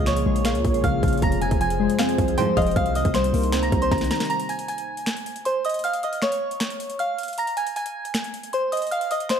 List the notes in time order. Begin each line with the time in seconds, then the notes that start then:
Already playing: C#2 A#2 C#3 A#3 F4 G#4 C#5
0.06 F3 C#5 C#6, finger snap, snare, closed hi-hat
0.17 C2, closed hi-hat
0.26 A#1 G#3
0.36 closed hi-hat
0.45 A#3 F5, finger snap, snare, closed hi-hat
0.55 C#2, closed hi-hat
0.65 A#1 A#2, kick, closed hi-hat
0.74 closed hi-hat
0.83 A#1 C#3 F5 F6, kick, closed hi-hat
1.03 A#1 F3, kick, closed hi-hat
1.08 closed hi-hat
1.13 closed hi-hat
1.17 closed hi-hat
1.22 F1 F2 F3 G#4 C5 A#5 A#6, kick, closed hi-hat
1.32 closed hi-hat
1.42 C3 G#5 G#6, closed hi-hat
1.51 F1, kick, closed hi-hat
1.60 F3 G#5 G#6, closed hi-hat
1.70 closed hi-hat
1.80 G#3
1.90 closed hi-hat
1.99 C4 F5, finger snap, snare, closed hi-hat
2.09 closed hi-hat
2.18 C2 F2, kick, closed hi-hat
2.28 closed hi-hat
2.37 C2 G#2 C3 F3 C5 G5 C6, closed hi-hat
2.57 F1 F3 D#5 F5 D#6, kick, closed hi-hat
2.62 closed hi-hat
2.67 closed hi-hat
2.71 closed hi-hat
2.76 C2 C3 A#3 D#4 F5 F6, kick, closed hi-hat
2.86 closed hi-hat
2.95 D#3 D#5 D#6, closed hi-hat
3.05 C2, kick, closed hi-hat
3.14 G3 C5 C6, finger snap, snare, closed hi-hat
3.24 closed hi-hat
3.34 C2 A#3, open hi-hat
3.43 closed hi-hat
3.52 C#2 C4, finger snap, snare, closed hi-hat
3.63 A#5 A#6, closed hi-hat
3.72 C2 C3, kick, closed hi-hat
3.82 C5 C6, closed hi-hat
3.91 C2 D#3 A#5 A#6, kick, snare, closed hi-hat
3.98 snare, closed hi-hat
4.04 closed hi-hat
4.11 G3 A#5 A#6, snare, closed hi-hat
4.16 closed hi-hat
4.20 snare, closed hi-hat
4.25 closed hi-hat
4.30 A#5 A#6, closed hi-hat
4.40 closed hi-hat
4.49 G#5 G#6, closed hi-hat
4.59 closed hi-hat
4.68 G#5 G#6, closed hi-hat
4.78 closed hi-hat
4.97 closed hi-hat
5.06 finger snap, snare, closed hi-hat
5.17 closed hi-hat
5.26 closed hi-hat
5.36 closed hi-hat
5.45 C5 C6, closed hi-hat
5.65 D#5 D#6, closed hi-hat
5.69 closed hi-hat
5.74 closed hi-hat
5.79 closed hi-hat
5.84 F5 F6, closed hi-hat
5.93 closed hi-hat
6.03 D#5 D#6, closed hi-hat
6.13 closed hi-hat
6.22 C#5 C#6, finger snap, snare, closed hi-hat
6.32 closed hi-hat
6.51 closed hi-hat
6.60 finger snap, snare, closed hi-hat
6.70 closed hi-hat
6.80 closed hi-hat
6.90 closed hi-hat
6.99 F5 F6, closed hi-hat
7.18 closed hi-hat
7.23 closed hi-hat
7.28 closed hi-hat
7.33 closed hi-hat
7.38 A#5 A#6, closed hi-hat
7.47 closed hi-hat
7.57 G#5 G#6, closed hi-hat
7.67 closed hi-hat
7.76 G#5 G#6, closed hi-hat
7.86 closed hi-hat
8.05 closed hi-hat
8.14 finger snap, snare, closed hi-hat
8.24 closed hi-hat
8.34 closed hi-hat
8.43 closed hi-hat
8.53 C5 C6, closed hi-hat
8.72 D#5 D#6, closed hi-hat
8.77 closed hi-hat
8.82 closed hi-hat
8.87 closed hi-hat
8.91 F5 F6, closed hi-hat
9.01 closed hi-hat
9.11 D#5 D#6, closed hi-hat
9.20 closed hi-hat
9.29 C5 C6, finger snap, snare, closed hi-hat